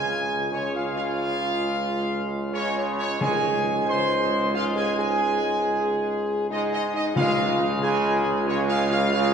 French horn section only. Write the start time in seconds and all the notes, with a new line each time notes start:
Already playing: G#4
0.52 C#4
0.74 F4
0.96 F4
2.52 C#4
2.75 C#4
2.98 C#4
3.20 G#4
3.87 C5
4.54 F4
4.75 G#4
4.97 G#4
6.50 D#4
6.73 D#4
6.93 D#4
7.15 F4
7.81 G#4
8.47 C#4
8.69 F4
8.91 F4
9.13 F4